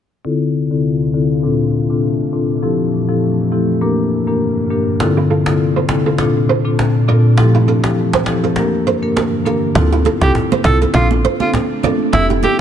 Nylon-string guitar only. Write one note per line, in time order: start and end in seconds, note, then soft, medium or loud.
5.17 5.28 E4 medium
5.17 5.27 G4 medium
5.30 5.44 F4 medium
5.30 5.43 A4 medium
5.76 5.87 A4 medium
5.76 5.87 C5 medium
6.06 6.17 F4 medium
6.06 6.16 A4 medium
6.49 6.62 A4 medium
6.49 6.62 C5 medium
7.08 7.22 A#4 medium
7.08 7.21 D5 medium
7.55 7.65 E4 medium
7.55 7.65 G4 medium
7.68 7.81 F4 medium
7.68 7.81 A4 medium
8.14 8.25 A4 medium
8.14 8.24 C5 medium
8.44 8.55 F4 medium
8.44 8.54 A4 medium
8.87 9.00 A4 medium
8.87 9.00 C5 medium
9.16 9.30 G4 medium
9.16 9.29 A#4 medium
9.46 9.59 F4 medium
9.46 9.59 A4 medium
9.92 10.03 E4 medium
9.92 10.03 G4 medium
10.06 10.19 F4 medium
10.06 10.18 A4 medium
10.52 10.63 A4 medium
10.52 10.62 C5 medium
10.82 10.92 F4 medium
10.82 10.92 A4 medium
11.25 11.38 A4 medium
11.25 11.37 C5 medium
11.84 11.97 A#4 medium
11.84 11.97 D5 medium
12.30 12.41 E4 medium
12.30 12.40 G4 medium
12.43 12.57 F4 medium
12.43 12.56 A4 medium